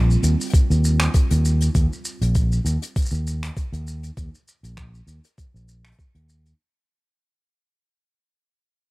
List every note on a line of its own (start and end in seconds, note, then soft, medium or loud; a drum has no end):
0.00 0.16 A#1 medium
0.00 6.59 G3 medium
0.00 6.58 C4 medium
0.00 6.59 F4 medium
0.11 shaker soft
0.23 0.34 D#2 medium
0.23 closed hi-hat soft
0.23 shaker medium
0.40 closed hi-hat soft
0.40 shaker medium
0.43 closed hi-hat soft
0.46 closed hi-hat soft
0.50 kick loud
0.50 closed hi-hat soft
0.54 closed hi-hat medium
0.54 shaker medium
0.70 1.07 D#2 medium
0.70 shaker soft
0.84 shaker medium
1.00 finger snap medium
1.00 closed hi-hat medium
1.00 shaker soft
1.14 kick loud
1.14 closed hi-hat medium
1.14 shaker soft
1.30 1.68 D#2 loud
1.30 closed hi-hat medium
1.30 shaker soft
1.45 shaker medium
1.61 closed hi-hat medium
1.61 shaker medium
1.74 1.86 D#2 medium
1.74 kick loud
1.74 closed hi-hat medium
1.74 shaker medium
1.93 shaker soft
2.05 shaker medium
2.21 2.58 A#1 medium
2.21 closed hi-hat medium
2.21 shaker soft
2.35 kick loud
2.35 closed hi-hat medium
2.35 shaker medium
2.52 shaker soft
2.65 2.76 D#2 medium
2.65 closed hi-hat soft
2.65 shaker medium
2.82 closed hi-hat medium
2.82 shaker soft
2.96 kick loud
2.96 closed hi-hat medium
2.96 shaker soft
2.99 shaker soft
3.02 shaker soft
3.05 shaker soft
3.10 3.49 D#2 medium
3.10 shaker soft
3.14 shaker soft
3.27 shaker medium
3.43 finger snap medium
3.43 closed hi-hat medium
3.43 shaker soft
3.56 kick loud
3.56 closed hi-hat medium
3.56 shaker medium
3.73 4.10 D#2 medium
3.73 closed hi-hat medium
3.73 shaker soft
3.87 shaker medium
4.03 closed hi-hat soft
4.03 shaker soft
4.17 4.28 D#2 medium
4.17 kick medium
4.17 closed hi-hat medium
4.17 shaker medium
4.35 shaker soft
4.48 shaker medium
4.63 5.00 A#1 medium
4.63 closed hi-hat soft
4.63 shaker soft
4.77 finger snap medium
4.77 kick loud
4.77 closed hi-hat medium
4.77 shaker medium
4.95 shaker soft
5.07 5.19 D#2 medium
5.07 closed hi-hat soft
5.07 shaker medium
5.24 closed hi-hat medium
5.24 shaker soft
5.38 kick medium
5.38 closed hi-hat medium
5.38 shaker medium
5.54 5.91 A#1 medium
5.54 shaker soft
5.68 shaker medium
5.85 finger snap medium
5.85 closed hi-hat soft
5.85 shaker soft
5.92 closed hi-hat medium
5.99 kick medium
5.99 shaker soft
6.15 6.52 D#2 medium
6.15 closed hi-hat soft
6.29 shaker medium
6.45 closed hi-hat soft
6.45 shaker soft